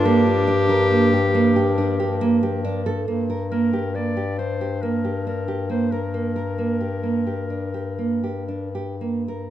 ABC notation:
X:1
M:7/4
L:1/8
Q:1/4=138
K:Gm
V:1 name="Clarinet"
G12 z2 | z2 B2 d2 c2 B2 B2 c B- | B12 z2 |]
V:2 name="Nylon-string guitar"
B, F D B B, G B, G D G B, G D A | B, B B, G B, G D G B, G D G B, B | B, B B, G B, G D G B, G D G B, B |]
V:3 name="Viola"
D12- D z | z12 z2 | z12 z2 |]
V:4 name="Woodwind section"
[F,B,B]12- [F,B,B]2 | z12 z2 | z12 z2 |]
V:5 name="Bass clarinet" clef=bass
G,,12- G,,2 | G,,12- G,,2- | G,,12- G,,2 |]